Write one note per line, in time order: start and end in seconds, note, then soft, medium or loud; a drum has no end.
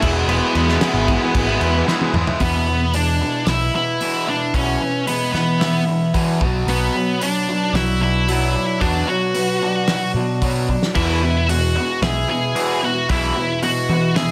0.00 0.22 E1 medium
0.00 1.84 E2 medium
0.00 1.86 B2 loud
0.00 0.28 E3 loud
0.00 1.87 E3 loud
0.00 0.17 G#3 medium
0.00 0.09 E4 medium
0.00 2.39 G#4 medium
0.00 2.39 B4 medium
0.00 2.37 E5 medium
0.00 0.09 E5 loud
0.00 2.39 B5 medium
0.00 kick loud
0.00 crash loud
0.04 0.16 B3 loud
0.04 0.15 E4 loud
0.16 0.28 G#3 medium
0.16 0.30 B3 medium
0.16 0.30 E4 medium
0.28 0.38 E1 loud
0.28 0.54 E3 loud
0.28 0.55 G#3 loud
0.28 1.84 B3 medium
0.28 0.55 B3 loud
0.28 0.56 E4 loud
0.28 1.84 B4 medium
0.28 crash medium
0.55 0.75 E2 medium
0.55 0.79 E3 medium
0.55 0.80 G#3 medium
0.55 0.81 B3 medium
0.55 0.82 E4 medium
0.55 crash medium
0.68 0.80 G#3 medium
0.68 0.82 B3 medium
0.68 0.82 E4 medium
0.68 snare soft
0.80 1.06 E3 loud
0.80 1.07 G#3 loud
0.80 1.08 B3 loud
0.80 1.08 E4 loud
0.80 snare loud
0.80 crash loud
0.94 1.14 G#1 loud
1.07 1.47 E3 medium
1.07 1.21 G#3 medium
1.07 1.21 B3 medium
1.07 1.21 E4 medium
1.07 kick medium
1.07 crash medium
1.20 1.49 G#3 medium
1.20 1.47 B3 medium
1.20 1.46 E4 medium
1.20 muted overdriven electric guitar stroke medium
1.35 1.55 G#1 loud
1.35 kick loud
1.35 crash medium
1.48 1.60 G#3 medium
1.48 1.61 B3 medium
1.48 1.62 E4 medium
1.60 1.81 E2 medium
1.60 1.85 E3 medium
1.60 1.74 G#3 medium
1.60 1.74 B3 medium
1.60 1.74 E4 medium
1.60 crash medium
1.74 1.87 G#3 medium
1.74 1.88 B3 medium
1.74 1.90 E4 medium
1.74 muted overdriven electric guitar stroke medium
1.86 2.12 E2 medium
1.86 2.12 B2 medium
1.86 2.13 E3 medium
1.86 2.14 G#3 loud
1.86 2.14 B3 medium
1.86 2.15 E4 loud
1.86 snare medium
2.01 high tom medium
2.13 2.24 E2 loud
2.13 2.39 E3 medium
2.13 2.29 G#3 medium
2.13 2.27 B3 medium
2.13 2.26 E4 medium
2.13 mid tom medium
2.27 2.40 G#3 medium
2.27 2.40 B3 medium
2.27 2.39 E4 medium
2.27 floor tom medium
2.40 3.20 E2 medium
2.40 2.65 E2 medium
2.40 3.74 E2 medium
2.40 2.66 B2 medium
2.40 2.66 E3 medium
2.40 2.90 B3 medium
2.40 2.96 B4 medium
2.40 kick loud
2.40 open hi-hat soft
2.67 2.91 E2 medium
2.67 2.91 B2 medium
2.67 4.00 E3 medium
2.94 3.18 E2 medium
2.94 3.18 B2 medium
2.94 4.27 G#3 medium
2.94 3.44 D4 medium
2.94 3.50 D5 medium
2.94 open hi-hat medium
3.21 3.45 E2 medium
3.21 3.45 B2 medium
3.21 3.73 B3 medium
3.47 3.67 B1 medium
3.47 3.71 E2 medium
3.47 3.72 B2 medium
3.47 4.81 E4 medium
3.47 3.73 E4 medium
3.47 3.74 E5 medium
3.47 snare loud
3.47 open hi-hat medium
3.74 3.98 E2 medium
3.74 3.98 B2 medium
3.74 4.27 B3 medium
3.74 4.24 E4 medium
3.74 4.30 E5 loud
4.01 4.26 E2 medium
4.01 4.26 B2 medium
4.01 4.80 E3 medium
4.01 4.26 E3 medium
4.01 open hi-hat soft
4.27 4.51 E2 medium
4.27 4.51 B2 medium
4.27 5.33 B3 medium
4.27 4.53 D4 medium
4.27 4.54 D5 medium
4.53 4.74 B1 loud
4.53 4.79 E2 medium
4.53 5.87 E2 medium
4.53 4.79 B2 medium
4.53 4.79 E3 medium
4.53 5.04 C#4 medium
4.53 5.07 C#5 medium
4.53 kick medium
4.53 open hi-hat soft
4.81 5.05 E2 medium
4.81 5.05 B2 medium
4.81 6.13 E3 medium
5.07 5.32 E2 medium
5.07 5.32 B2 medium
5.07 6.41 G#3 medium
5.07 5.32 B3 medium
5.07 5.31 B4 medium
5.07 open hi-hat medium
5.32 5.58 E2 medium
5.32 5.59 B2 medium
5.32 6.42 E3 medium
5.32 5.83 B3 soft
5.32 5.86 B3 medium
5.32 5.83 B4 medium
5.32 snare soft
5.60 5.85 E2 medium
5.60 5.85 B2 medium
5.60 6.40 E4 medium
5.60 snare loud
5.60 open hi-hat medium
5.87 6.12 E2 medium
5.87 6.12 B2 medium
5.87 7.21 B3 medium
6.14 6.39 E2 medium
6.14 6.39 B2 medium
6.14 6.41 E3 medium
6.14 6.39 E3 medium
6.14 kick medium
6.14 open hi-hat medium
6.40 6.61 B1 medium
6.40 6.66 B2 medium
6.40 6.68 B2 medium
6.40 6.66 F#3 medium
6.40 6.66 B3 medium
6.40 kick medium
6.66 6.87 B1 medium
6.66 8.01 B2 medium
6.66 6.93 B2 medium
6.66 6.93 F#3 medium
6.66 7.18 B3 medium
6.66 6.93 B3 loud
6.66 7.22 B4 medium
6.66 open hi-hat medium
6.95 7.19 B2 medium
6.95 8.27 F#3 medium
6.95 7.19 F#3 medium
7.21 7.45 B2 medium
7.21 7.45 F#3 medium
7.21 9.35 B3 medium
7.21 7.71 D4 medium
7.21 7.77 D5 medium
7.21 open hi-hat medium
7.48 7.72 B2 medium
7.48 7.72 F#3 medium
7.48 8.00 D4 medium
7.73 8.54 B1 medium
7.73 7.98 B2 medium
7.73 7.99 F#3 medium
7.73 8.00 E4 medium
7.73 9.08 F#4 medium
7.73 8.00 E5 medium
7.73 snare loud
7.73 open hi-hat medium
8.01 8.25 B2 medium
8.01 8.25 F#3 medium
8.01 8.54 D4 medium
8.01 8.78 E4 medium
8.01 8.85 E5 medium
8.28 8.53 B2 medium
8.28 9.07 F#3 medium
8.28 8.52 F#3 loud
8.28 8.54 B3 medium
8.28 open hi-hat medium
8.54 8.78 B2 medium
8.54 8.78 F#3 medium
8.54 9.62 D4 medium
8.81 9.01 E2 loud
8.81 9.06 B2 medium
8.81 10.15 B2 medium
8.81 9.07 F#3 medium
8.81 9.07 B3 loud
8.81 9.06 D4 medium
8.81 9.09 D5 medium
8.81 kick medium
8.81 open hi-hat soft
9.07 9.32 B2 medium
9.07 10.42 F#3 medium
9.07 9.33 F#3 medium
9.07 10.11 F#4 medium
9.07 10.11 F#5 medium
9.34 9.59 B2 medium
9.34 9.59 F#3 medium
9.34 11.49 B3 medium
9.34 open hi-hat medium
9.62 9.86 B2 medium
9.62 9.86 F#3 medium
9.62 10.15 D4 medium
9.88 10.13 B2 medium
9.88 10.13 F#3 medium
9.88 10.96 F#4 medium
9.88 snare loud
9.88 open hi-hat medium
10.14 10.75 B2 medium
10.14 10.40 B2 medium
10.14 10.40 F#3 medium
10.14 10.68 D4 medium
10.42 10.67 B2 medium
10.42 10.67 F#3 medium
10.42 10.96 F#3 medium
10.42 10.67 B3 medium
10.42 kick medium
10.42 open hi-hat medium
10.69 10.93 B2 medium
10.69 10.93 F#3 medium
10.69 10.96 D4 medium
10.69 kick medium
10.83 snare medium
10.95 11.76 E2 medium
10.95 11.21 E2 medium
10.95 12.30 E2 medium
10.95 11.21 B2 medium
10.95 11.21 E3 medium
10.95 11.45 E4 medium
10.95 11.50 E5 medium
10.95 kick loud
10.95 open hi-hat medium
10.95 crash medium
11.23 11.46 E2 medium
11.23 11.47 B2 medium
11.23 12.55 E3 medium
11.49 11.73 E2 medium
11.49 11.73 B2 medium
11.49 12.83 G#3 medium
11.49 11.99 F#4 medium
11.49 11.99 F#5 medium
11.49 open hi-hat medium
11.76 12.00 E2 medium
11.76 12.00 B2 medium
11.76 12.28 B3 medium
12.02 12.22 B1 medium
12.02 12.26 E2 medium
12.02 12.27 B2 medium
12.02 14.17 E4 medium
12.02 12.27 G#4 medium
12.02 12.30 G#5 medium
12.02 snare loud
12.02 open hi-hat medium
12.29 12.53 E2 medium
12.29 12.53 B2 medium
12.29 12.82 B3 medium
12.29 12.79 G#4 medium
12.29 12.85 G#5 medium
12.56 12.81 E2 medium
12.56 12.81 B2 medium
12.56 13.37 E3 medium
12.56 12.81 E3 medium
12.56 open hi-hat medium
12.83 13.07 E2 medium
12.83 13.07 B2 medium
12.83 13.90 B3 medium
12.83 13.08 F#4 medium
12.83 13.11 F#5 medium
13.09 13.30 B1 loud
13.09 13.35 E2 medium
13.09 14.31 E2 medium
13.09 13.35 B2 medium
13.09 13.35 E3 loud
13.09 13.60 E4 medium
13.09 13.60 E5 medium
13.09 kick medium
13.09 open hi-hat medium
13.36 13.60 E2 medium
13.36 13.60 B2 medium
13.36 14.31 E3 medium
13.62 13.86 E2 medium
13.62 13.87 B2 medium
13.62 14.31 G#3 medium
13.62 14.13 F#4 medium
13.62 14.16 F#5 medium
13.62 open hi-hat medium
13.89 14.13 E2 medium
13.89 14.14 B2 medium
13.89 14.31 E3 medium
13.89 14.31 B3 medium
14.16 14.31 E2 medium
14.16 14.31 B2 medium
14.16 14.31 E4 medium
14.16 14.31 G#4 medium
14.16 14.31 G#5 medium
14.16 snare loud
14.16 open hi-hat medium